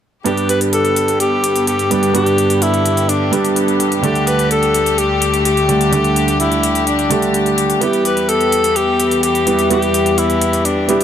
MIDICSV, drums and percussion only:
0, 0, Header, 1, 2, 480
1, 0, Start_track
1, 0, Key_signature, 1, "major"
1, 0, Tempo, 472441
1, 261, Time_signature, 4, 2, 24, 8
1, 11216, End_track
2, 0, Start_track
2, 0, Title_t, "Drums"
2, 260, Note_on_c, 9, 42, 71
2, 362, Note_off_c, 9, 42, 0
2, 381, Note_on_c, 9, 42, 33
2, 482, Note_off_c, 9, 42, 0
2, 500, Note_on_c, 9, 42, 73
2, 602, Note_off_c, 9, 42, 0
2, 620, Note_on_c, 9, 42, 48
2, 722, Note_off_c, 9, 42, 0
2, 740, Note_on_c, 9, 42, 70
2, 841, Note_off_c, 9, 42, 0
2, 860, Note_on_c, 9, 42, 32
2, 962, Note_off_c, 9, 42, 0
2, 980, Note_on_c, 9, 42, 72
2, 1081, Note_off_c, 9, 42, 0
2, 1100, Note_on_c, 9, 42, 50
2, 1202, Note_off_c, 9, 42, 0
2, 1220, Note_on_c, 9, 42, 70
2, 1322, Note_off_c, 9, 42, 0
2, 1460, Note_on_c, 9, 42, 70
2, 1562, Note_off_c, 9, 42, 0
2, 1580, Note_on_c, 9, 42, 49
2, 1682, Note_off_c, 9, 42, 0
2, 1701, Note_on_c, 9, 42, 72
2, 1802, Note_off_c, 9, 42, 0
2, 1821, Note_on_c, 9, 42, 34
2, 1923, Note_off_c, 9, 42, 0
2, 1941, Note_on_c, 9, 42, 73
2, 2042, Note_off_c, 9, 42, 0
2, 2061, Note_on_c, 9, 42, 47
2, 2162, Note_off_c, 9, 42, 0
2, 2181, Note_on_c, 9, 42, 67
2, 2282, Note_off_c, 9, 42, 0
2, 2300, Note_on_c, 9, 42, 32
2, 2402, Note_off_c, 9, 42, 0
2, 2420, Note_on_c, 9, 42, 69
2, 2522, Note_off_c, 9, 42, 0
2, 2541, Note_on_c, 9, 42, 48
2, 2643, Note_off_c, 9, 42, 0
2, 2660, Note_on_c, 9, 42, 68
2, 2762, Note_off_c, 9, 42, 0
2, 2781, Note_on_c, 9, 42, 31
2, 2882, Note_off_c, 9, 42, 0
2, 2901, Note_on_c, 9, 42, 72
2, 3003, Note_off_c, 9, 42, 0
2, 3020, Note_on_c, 9, 42, 47
2, 3122, Note_off_c, 9, 42, 0
2, 3141, Note_on_c, 9, 42, 69
2, 3242, Note_off_c, 9, 42, 0
2, 3381, Note_on_c, 9, 42, 67
2, 3482, Note_off_c, 9, 42, 0
2, 3501, Note_on_c, 9, 42, 46
2, 3602, Note_off_c, 9, 42, 0
2, 3620, Note_on_c, 9, 42, 73
2, 3722, Note_off_c, 9, 42, 0
2, 3741, Note_on_c, 9, 42, 34
2, 3843, Note_off_c, 9, 42, 0
2, 3861, Note_on_c, 9, 42, 73
2, 3962, Note_off_c, 9, 42, 0
2, 3981, Note_on_c, 9, 42, 46
2, 4082, Note_off_c, 9, 42, 0
2, 4100, Note_on_c, 9, 42, 68
2, 4202, Note_off_c, 9, 42, 0
2, 4221, Note_on_c, 9, 42, 32
2, 4322, Note_off_c, 9, 42, 0
2, 4340, Note_on_c, 9, 42, 71
2, 4442, Note_off_c, 9, 42, 0
2, 4461, Note_on_c, 9, 42, 45
2, 4562, Note_off_c, 9, 42, 0
2, 4580, Note_on_c, 9, 42, 66
2, 4682, Note_off_c, 9, 42, 0
2, 4701, Note_on_c, 9, 42, 31
2, 4802, Note_off_c, 9, 42, 0
2, 4821, Note_on_c, 9, 42, 68
2, 4922, Note_off_c, 9, 42, 0
2, 4941, Note_on_c, 9, 42, 45
2, 5043, Note_off_c, 9, 42, 0
2, 5061, Note_on_c, 9, 42, 66
2, 5162, Note_off_c, 9, 42, 0
2, 5301, Note_on_c, 9, 42, 70
2, 5403, Note_off_c, 9, 42, 0
2, 5421, Note_on_c, 9, 42, 47
2, 5523, Note_off_c, 9, 42, 0
2, 5541, Note_on_c, 9, 42, 69
2, 5642, Note_off_c, 9, 42, 0
2, 5661, Note_on_c, 9, 42, 34
2, 5763, Note_off_c, 9, 42, 0
2, 5781, Note_on_c, 9, 42, 69
2, 5883, Note_off_c, 9, 42, 0
2, 5901, Note_on_c, 9, 42, 44
2, 6002, Note_off_c, 9, 42, 0
2, 6021, Note_on_c, 9, 42, 67
2, 6122, Note_off_c, 9, 42, 0
2, 6141, Note_on_c, 9, 42, 31
2, 6243, Note_off_c, 9, 42, 0
2, 6261, Note_on_c, 9, 42, 70
2, 6363, Note_off_c, 9, 42, 0
2, 6381, Note_on_c, 9, 42, 46
2, 6482, Note_off_c, 9, 42, 0
2, 6501, Note_on_c, 9, 42, 67
2, 6603, Note_off_c, 9, 42, 0
2, 6620, Note_on_c, 9, 42, 31
2, 6722, Note_off_c, 9, 42, 0
2, 6740, Note_on_c, 9, 42, 66
2, 6842, Note_off_c, 9, 42, 0
2, 6860, Note_on_c, 9, 42, 45
2, 6962, Note_off_c, 9, 42, 0
2, 6980, Note_on_c, 9, 42, 66
2, 7081, Note_off_c, 9, 42, 0
2, 7100, Note_on_c, 9, 42, 31
2, 7201, Note_off_c, 9, 42, 0
2, 7219, Note_on_c, 9, 42, 67
2, 7321, Note_off_c, 9, 42, 0
2, 7340, Note_on_c, 9, 42, 44
2, 7441, Note_off_c, 9, 42, 0
2, 7460, Note_on_c, 9, 42, 66
2, 7561, Note_off_c, 9, 42, 0
2, 7580, Note_on_c, 9, 42, 32
2, 7682, Note_off_c, 9, 42, 0
2, 7700, Note_on_c, 9, 42, 68
2, 7801, Note_off_c, 9, 42, 0
2, 7820, Note_on_c, 9, 42, 44
2, 7922, Note_off_c, 9, 42, 0
2, 7940, Note_on_c, 9, 42, 70
2, 8042, Note_off_c, 9, 42, 0
2, 8060, Note_on_c, 9, 42, 32
2, 8162, Note_off_c, 9, 42, 0
2, 8180, Note_on_c, 9, 42, 67
2, 8282, Note_off_c, 9, 42, 0
2, 8300, Note_on_c, 9, 42, 46
2, 8402, Note_off_c, 9, 42, 0
2, 8420, Note_on_c, 9, 42, 67
2, 8522, Note_off_c, 9, 42, 0
2, 8540, Note_on_c, 9, 42, 31
2, 8642, Note_off_c, 9, 42, 0
2, 8660, Note_on_c, 9, 42, 68
2, 8762, Note_off_c, 9, 42, 0
2, 8779, Note_on_c, 9, 42, 45
2, 8881, Note_off_c, 9, 42, 0
2, 8900, Note_on_c, 9, 42, 67
2, 9001, Note_off_c, 9, 42, 0
2, 9140, Note_on_c, 9, 42, 69
2, 9241, Note_off_c, 9, 42, 0
2, 9260, Note_on_c, 9, 42, 43
2, 9361, Note_off_c, 9, 42, 0
2, 9379, Note_on_c, 9, 42, 67
2, 9481, Note_off_c, 9, 42, 0
2, 9500, Note_on_c, 9, 42, 34
2, 9602, Note_off_c, 9, 42, 0
2, 9620, Note_on_c, 9, 42, 67
2, 9722, Note_off_c, 9, 42, 0
2, 9740, Note_on_c, 9, 42, 44
2, 9841, Note_off_c, 9, 42, 0
2, 9861, Note_on_c, 9, 42, 72
2, 9962, Note_off_c, 9, 42, 0
2, 9981, Note_on_c, 9, 42, 33
2, 10083, Note_off_c, 9, 42, 0
2, 10101, Note_on_c, 9, 42, 72
2, 10203, Note_off_c, 9, 42, 0
2, 10221, Note_on_c, 9, 42, 47
2, 10323, Note_off_c, 9, 42, 0
2, 10341, Note_on_c, 9, 42, 68
2, 10443, Note_off_c, 9, 42, 0
2, 10462, Note_on_c, 9, 42, 31
2, 10563, Note_off_c, 9, 42, 0
2, 10582, Note_on_c, 9, 42, 71
2, 10683, Note_off_c, 9, 42, 0
2, 10702, Note_on_c, 9, 42, 47
2, 10803, Note_off_c, 9, 42, 0
2, 10822, Note_on_c, 9, 42, 70
2, 10923, Note_off_c, 9, 42, 0
2, 11061, Note_on_c, 9, 42, 71
2, 11163, Note_off_c, 9, 42, 0
2, 11182, Note_on_c, 9, 42, 47
2, 11216, Note_off_c, 9, 42, 0
2, 11216, End_track
0, 0, End_of_file